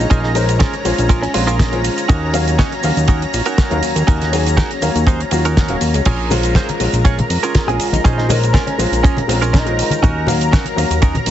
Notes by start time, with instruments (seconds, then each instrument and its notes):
Already playing: grand piano G#3 C#4 F4, analog synth pad C#4 A#5
0.00 cabasa
0.10 analog synth bass A#1, clean electric guitar C#4 D#4 F4 G#4 A#4, kick, closed hi-hat, cabasa
0.23 clean electric guitar D#4, snare
0.35 grand piano G#3 C#4 A#4 C5, clean electric guitar D#4, open hi-hat, cabasa
0.49 closed hi-hat, cabasa
0.59 clean electric guitar C#4 F4 G#4 A#4, kick, snare, closed hi-hat, cabasa
0.73 closed hi-hat
0.85 analog synth bass A#1, grand piano G#3 C#4 F4 C5, muted clean electric guitar stroke, open hi-hat, cabasa
0.98 analog synth bass A#1, closed hi-hat, cabasa
1.09 clean electric guitar C#4 F4 G#4 A#4, kick, closed hi-hat, cabasa
1.23 clean electric guitar C#4, closed hi-hat
1.34 analog synth bass A#1, grand piano G#3 C4 C#4 F4, clean electric guitar F4, muted clean electric guitar stroke, open hi-hat, cabasa
1.47 clean electric guitar C#4 F4 G#4 A#4, closed hi-hat, cabasa
1.59 kick, snare, closed hi-hat, cabasa
1.72 grand piano G#3 C#4 F4 C5, closed hi-hat
1.84 open hi-hat, cabasa
1.98 closed hi-hat, cabasa
2.08 analog synth bass D#2, clean electric guitar C#4 D#4 F#4 A#4, kick, closed hi-hat, cabasa
2.33 grand piano F#3 A#3 C#4 F5, open hi-hat, cabasa
2.48 closed hi-hat, cabasa
2.58 clean electric guitar C#4 D#4 F#4 C#5, kick, snare, closed hi-hat, cabasa
2.72 closed hi-hat
2.82 analog synth bass D#2, grand piano F#3 A#3 C#4 F5, muted clean electric guitar stroke, open hi-hat, cabasa
2.97 analog synth bass D#2, closed hi-hat, cabasa
3.08 clean electric guitar C#4 D#4 F#4 A#4, kick, closed hi-hat, cabasa
3.22 closed hi-hat
3.34 analog synth bass A#1, muted clean electric guitar stroke, open hi-hat, cabasa
3.45 clean electric guitar C#4 D#4 F#4 A#4, closed hi-hat, cabasa
3.58 kick, snare, closed hi-hat, cabasa
3.70 analog synth bass D#2, grand piano F#3 A#3 C#4 F5, closed hi-hat
3.83 analog synth bass D#2, open hi-hat, cabasa
3.96 analog synth bass D#2, closed hi-hat, cabasa
4.07 analog synth bass D#2, clean electric guitar C#4 D#4 F#4 A#4, kick, closed hi-hat, cabasa
4.22 snare, closed hi-hat
4.32 grand piano F#3 A#3 C#4 G#4, open hi-hat, cabasa
4.46 closed hi-hat, cabasa
4.57 clean electric guitar C#4 D#4 F#4 A#4, kick, snare, closed hi-hat, cabasa
4.71 closed hi-hat
4.82 analog synth bass D#2, grand piano F#3 A#3 C#4 F5, muted clean electric guitar stroke, open hi-hat, cabasa
4.95 analog synth bass D#2, closed hi-hat, cabasa
5.07 clean electric guitar C#4 D#4 F#4 C5, kick, closed hi-hat, cabasa
5.20 closed hi-hat
5.31 analog synth bass D#2, grand piano F#3 A#3 C#4 F4, muted clean electric guitar stroke, open hi-hat, cabasa
5.45 clean electric guitar C#4 D#4 F#4 A#4, closed hi-hat, cabasa
5.57 kick, snare, closed hi-hat, cabasa
5.68 analog synth bass D#1, grand piano F#3 A#3 C#4 F5, closed hi-hat
5.81 analog synth bass D#2, open hi-hat, cabasa
5.94 analog synth bass C#2, closed hi-hat, cabasa
6.05 analog synth bass A#1, clean electric guitar C#4 F4 G#4 A#4, analog synth pad A#4 A#5, kick, closed hi-hat, crash, low conga, cabasa
6.30 grand piano G#3 C#4 F4 C5, open hi-hat, high conga, low conga, cabasa
6.43 closed hi-hat, cabasa
6.55 clean electric guitar C#4 F4 G#4 C5, kick, snare, closed hi-hat, cabasa
6.69 closed hi-hat, high conga
6.80 analog synth bass A#1, grand piano G#3 C#4 F4, muted clean electric guitar stroke, open hi-hat, cabasa
6.93 analog synth bass A#1, closed hi-hat, cabasa
7.05 clean electric guitar C#4 F4 G#4 C#5, kick, closed hi-hat, cabasa
7.19 closed hi-hat, high conga, low conga
7.30 analog synth bass F2, muted clean electric guitar stroke, open hi-hat, cabasa
7.43 clean electric guitar C#4 F4 G#4 A#4, closed hi-hat, cabasa
7.55 kick, snare, closed hi-hat, high conga, cabasa
7.67 analog synth bass A#1, grand piano G#3 C#4 F4, clean electric guitar G#4, closed hi-hat
7.79 analog synth bass A#1, open hi-hat, cabasa
7.92 analog synth bass A#1, clean electric guitar D#4, closed hi-hat, high conga, cabasa
8.04 analog synth bass A#1, clean electric guitar C#4 D#4 F4 G#4 C5, kick, closed hi-hat, low conga, cabasa
8.18 clean electric guitar D#4, snare
8.29 grand piano G#3 C#4 A#4 C5, clean electric guitar D#4, open hi-hat, high conga, low conga, cabasa
8.43 closed hi-hat, cabasa
8.53 clean electric guitar C#4 F4 G#4 A#4, kick, snare, closed hi-hat, cabasa
8.67 clean electric guitar C#4, closed hi-hat, high conga
8.78 analog synth bass A#1, grand piano G#3 C#4 F4 C5, muted clean electric guitar stroke, open hi-hat, cabasa
8.92 analog synth bass A#1, closed hi-hat, cabasa
9.03 clean electric guitar C#4 F4 G#4 A#4, kick, closed hi-hat, cabasa
9.17 closed hi-hat, high conga, low conga
9.28 analog synth bass A#1, grand piano G#3 C4 C#4 F4, muted clean electric guitar stroke, open hi-hat, cabasa
9.42 clean electric guitar C#4 F4 G#4 A#4, closed hi-hat, cabasa
9.53 clean electric guitar D#4, kick, snare, closed hi-hat, high conga, cabasa
9.66 grand piano G#3 C#4 F4 C5, closed hi-hat
9.79 open hi-hat, cabasa
9.90 closed hi-hat, high conga, cabasa
10.02 analog synth bass D#2, clean electric guitar C#4 D#4 F#4 A#4, kick, closed hi-hat, low conga, cabasa
10.27 grand piano F#3 A#3 C#4 F5, open hi-hat, high conga, low conga, cabasa
10.41 closed hi-hat, cabasa
10.52 clean electric guitar C#4 D#4 F#4 A#4, kick, snare, closed hi-hat, cabasa
10.64 closed hi-hat, high conga
10.76 analog synth bass D#2, grand piano F#3 A#3 C#4 F5, muted clean electric guitar stroke, open hi-hat, cabasa
10.90 analog synth bass D#2, closed hi-hat, cabasa
11.02 clean electric guitar C#4 D#4 F#4 A#4, kick, closed hi-hat, cabasa
11.14 closed hi-hat, high conga, low conga
11.26 analog synth bass A#1, muted clean electric guitar stroke, open hi-hat, cabasa